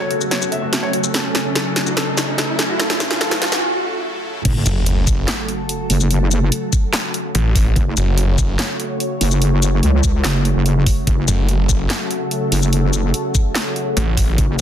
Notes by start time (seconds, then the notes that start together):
Already playing: C#3 F#3 A3 F#4 A4, riser
0.00 C#5
0.11 F#4, closed hi-hat
0.21 F#4, shaker
0.31 C#5, snare, closed hi-hat
0.42 F#4, shaker
0.52 E5, closed hi-hat
0.62 F#4
0.72 F#4, snare, closed hi-hat
0.83 C#5
0.93 F#4, closed hi-hat
1.04 F#4, shaker
1.14 E4 A4, snare, closed hi-hat
1.25 C#4
1.35 C#4, snare, closed hi-hat
1.45 C#4
1.55 A4, snare, closed hi-hat
1.66 C#4
1.76 C#4, snare, closed hi-hat
1.86 F#4, shaker
1.97 A4, snare, closed hi-hat
2.07 C#4
2.17 C#4, snare, closed hi-hat, shaker
2.28 C#4
2.38 A4, snare, closed hi-hat
2.49 C#4
2.59 C#4, snare, closed hi-hat
2.69 F#4
2.79 A4, snare, closed hi-hat
2.90 C#4, snare
3.00 C#4, snare, closed hi-hat, shaker
3.11 C#4, snare
3.21 A4, snare, closed hi-hat
3.31 C#4, snare
3.42 C#4, snare, closed hi-hat
3.52 C#4, snare, shaker
4.45 F#1 C#3 F#3 A3 F#4 A4, kick, closed hi-hat, crash, sub drop
4.66 F#1, closed hi-hat, shaker
4.86 closed hi-hat
5.07 kick, closed hi-hat, shaker
5.28 snare, clap, closed hi-hat
5.49 closed hi-hat
5.69 closed hi-hat
5.90 F#1, open hi-hat
6.00 shaker
6.11 closed hi-hat
6.31 closed hi-hat, shaker
6.52 closed hi-hat
6.73 kick, closed hi-hat, shaker
6.93 snare, clap, closed hi-hat
7.14 closed hi-hat
7.35 A1, closed hi-hat
7.55 kick, open hi-hat
7.76 F#1 C#5, kick, closed hi-hat
7.97 F#1, closed hi-hat, shaker
8.18 closed hi-hat
8.38 kick, closed hi-hat, shaker
8.59 snare, clap, closed hi-hat
8.80 closed hi-hat
9.00 closed hi-hat
9.21 F#1, open hi-hat
9.31 shaker
9.42 closed hi-hat
9.62 closed hi-hat, shaker
9.83 C#2, closed hi-hat
10.04 kick, closed hi-hat, shaker
10.24 F#1, snare, clap, closed hi-hat
10.45 closed hi-hat
10.56 F#1
10.66 closed hi-hat
10.86 kick, open hi-hat
11.07 F#1 A4, kick, closed hi-hat
11.28 F#1, closed hi-hat, shaker
11.49 closed hi-hat
11.69 kick, closed hi-hat, shaker
11.90 snare, clap, closed hi-hat
12.11 closed hi-hat
12.31 closed hi-hat
12.52 F#1, open hi-hat
12.62 shaker
12.73 closed hi-hat
12.93 closed hi-hat, shaker
13.14 closed hi-hat
13.35 kick, closed hi-hat, shaker
13.55 snare, clap, closed hi-hat
13.76 closed hi-hat
13.97 A1, closed hi-hat
14.17 kick, open hi-hat
14.38 F#1 B4, kick, closed hi-hat